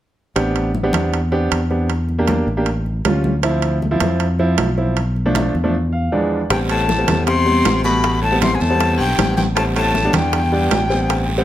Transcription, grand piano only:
0.36 B3 C4 D4 G4
0.83 B3 C4 D4 G4
1.32 B3 C4 D4 G4
1.70 B3 C4 D4 G4
2.19 A#3 D4 G4
2.57 A#3 D4 G4
3.05 G3 C#4 F4
3.43 F3 C4 E4
3.91 F3 C4 E4
4.39 F3 C4 E4
4.77 F3 C4 E4
5.26 F3 A3 D4
5.64 F3 A3 D4
5.92 F5
6.12 E2 F3 G#3 D4 D5
6.50 G3 B3 C4
6.98 G3 B3 C4
7.46 G3 B3 C4
7.84 G3 A3 B3
8.32 G3 B3 C4
8.70 G3 B3 C4
9.18 G3 B3 C4
9.57 G3 B3 C4
10.04 G3 B3 D4
10.52 G3 B3 D4
10.90 G3 B3 C4
11.38 G3 B3 C4

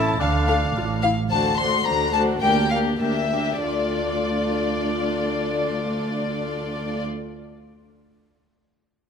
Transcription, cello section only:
Already playing: A2
0.20 D3
0.76 A2
1.31 D2
1.86 D2
2.41 D2
3.00 D2
3.65 D2

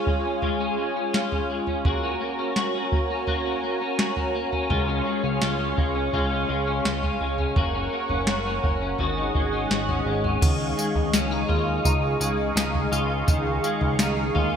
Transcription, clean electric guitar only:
Already playing: C#4 F4
0.07 G#3
0.25 C#4
0.43 G#3 F4
0.60 C#4
0.78 G#3
0.96 C#4
1.13 F4
1.32 C#4
1.50 G#3
1.68 C#4
1.86 A#3 F#4
2.03 C#4
2.21 A#3
2.39 C#4
2.57 F#4
2.75 C#4
2.92 A#3
3.10 C#4
3.27 A#3 F#4
3.46 C#4
3.63 A#3
3.81 C#4
3.99 F#4
4.17 C#4
4.35 A#3
4.53 C#4
4.70 G#3 F4
4.88 C#4
5.06 G#3
5.24 C#4
5.42 F4
5.60 C#4
5.77 G#3
5.95 C#4
6.13 G#3 F4
6.32 C#4
6.49 G#3
6.67 C#4
6.85 F4
7.03 C#4
7.21 G#3
7.39 C#4
7.57 A#3 F#4
7.75 C#4
7.93 A#3
8.10 C#4
8.28 F#4
8.46 C#4
8.63 A#3
8.81 C#4
8.99 D#3 F#4
9.17 C#4
9.35 G#3
9.53 C#4
9.71 F#4
9.88 C#4
10.07 G#3
10.24 C#4
10.42 D#3
10.77 G#3
11.13 C#4
11.31 D#4
11.48 F4
11.85 D#4
12.20 G#3
12.56 D#4
12.92 F4
13.27 D#3
13.64 G#3
13.99 D#4
14.35 F4

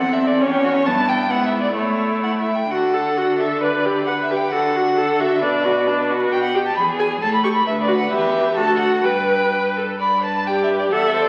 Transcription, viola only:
Already playing: C4
0.41 C#4
0.86 B3
1.30 B3
1.76 A3
2.71 F#4
2.94 A4
3.17 F#4
3.40 A4
3.63 B4
3.86 G4
4.08 B4
4.31 G4
4.54 A4
4.76 F#4
4.98 A4
5.20 F#4
5.42 D4
5.64 F#4
5.87 D4
6.09 F#4
6.55 G4
6.99 G#4
7.43 G4
7.88 F#4
8.10 G4
8.57 F#4
9.05 B4
10.47 G4
10.93 A4

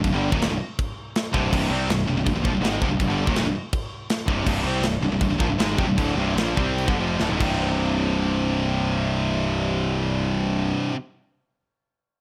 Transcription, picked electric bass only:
0.04 C1
0.12 G1
0.32 D#1
0.49 C1
1.34 C1
1.52 C1
1.70 C2
1.88 C1
2.07 C1
2.15 C1
2.26 C1
2.34 C1
2.45 A#1
2.52 C1
2.61 G#1
2.82 F1
2.89 C1
2.99 C1
3.07 G1
3.27 D#1
3.44 C1
4.28 C1
4.46 C1
4.63 C2
4.82 C1
5.00 C1
5.10 C1
5.21 C1
5.30 C1
5.39 A#1
5.48 C1
5.58 G#1
5.78 F1
5.87 C1
5.98 D1
6.15 C1
6.36 A#1
6.57 C2
6.88 G1
6.98 F1
7.20 D1
7.30 D#1
7.40 C1

